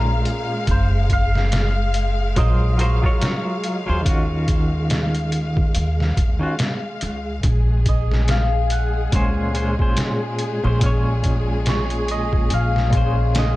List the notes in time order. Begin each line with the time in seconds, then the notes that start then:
Already playing: A#1 A#2 G#3 C#4 A#4 C5 F5
0.25 closed hi-hat
0.67 F#1 C5, kick, closed hi-hat
1.10 F5, kick, closed hi-hat
1.35 snare
1.52 snare, closed hi-hat
1.94 closed hi-hat
2.36 A#1 F#3 F4 G#4 A#4 C5 D#5, kick, closed hi-hat
2.77 F#3 F4 A#4 C5 C#5, closed hi-hat
3.02 F#3 F4 A#4, kick
3.06 C#5
3.21 snare, closed hi-hat
3.64 closed hi-hat
3.86 D#2 F#3 F4 G#4 C5
4.02 D#3 C#4
4.06 F4 F#4, kick, closed hi-hat
4.48 kick, closed hi-hat
4.90 snare, closed hi-hat
5.15 closed hi-hat
5.32 closed hi-hat
5.57 kick
5.75 D#2, closed hi-hat
6.00 snare
6.17 D#2, kick, closed hi-hat
6.39 D#3 C#4 F4 F#4
6.59 snare, closed hi-hat
7.01 C#2, closed hi-hat
7.43 A#1 G#3 G#4, kick, closed hi-hat
7.86 D#5, kick, closed hi-hat
8.12 snare
8.28 F5, snare, closed hi-hat
8.70 F#5, closed hi-hat
9.12 C#2 A#2 G#3 C#4 C5 G#5, kick, closed hi-hat
9.53 A#2 G#3 C#4 C5, closed hi-hat
9.78 A#2 G#3 C#4 C5, kick
9.97 snare, closed hi-hat
10.39 closed hi-hat
10.64 A#1 A#2 G#3 C#4 C5
10.79 A#2 G#3, kick, closed hi-hat
10.83 C#4 C#5
11.24 kick, closed hi-hat
11.66 C#5, snare, closed hi-hat
11.90 closed hi-hat
12.08 D#5, closed hi-hat
12.33 kick
12.50 A#1 F5, closed hi-hat
12.76 snare
12.90 A#2 G#3, kick, closed hi-hat
12.95 C#4 C5
13.35 D#5, snare, closed hi-hat